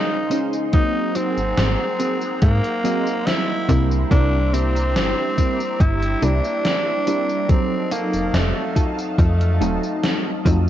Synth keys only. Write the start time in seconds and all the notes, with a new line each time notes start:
Already playing: G#3 C#4 D#4 C5
0.31 G#3 C#4 D#4 C5
0.72 F#3 A#3 C4 D#4
2.83 F#3 A#3 C4 D#5
3.68 G3 A#3 D4 E4
4.09 G3 A#3 D4 E4
6.21 G3 A#3 D4 E4
7.06 G3 A#3 D4 E4
7.47 F#3 C4 D#4 A4
9.60 F#3 A3 C4 D#4
10.45 F#3 A3 C4 D#4